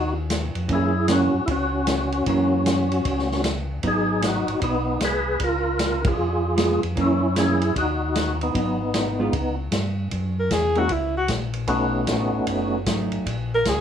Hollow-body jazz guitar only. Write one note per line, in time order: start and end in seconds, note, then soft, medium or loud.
0.68 0.91 E3 medium
0.68 0.92 A#3 medium
0.68 0.92 C#4 medium
1.08 1.31 E3 soft
1.08 1.31 A#3 medium
1.08 1.31 C#4 medium
2.27 2.86 E3 medium
2.27 2.86 A#3 medium
2.27 2.86 C#4 medium
3.83 4.43 F#3 medium
3.83 4.43 B3 medium
3.83 4.43 D#4 medium
6.56 6.80 G#3 medium
6.56 6.80 B3 medium
6.56 6.81 F4 medium
6.96 7.19 E3 medium
6.96 7.20 A#3 medium
6.96 7.20 C#4 medium
7.37 7.59 E3 medium
7.37 7.60 A#3 medium
7.37 7.60 C#4 medium
8.54 8.77 F#3 soft
8.54 8.78 B3 soft
8.54 8.78 D#4 medium
9.19 9.31 G#3 medium
9.19 9.32 B3 medium
9.19 9.32 F4 medium
12.86 13.26 F#3 medium
12.86 13.26 A3 soft
12.86 13.26 D#4 medium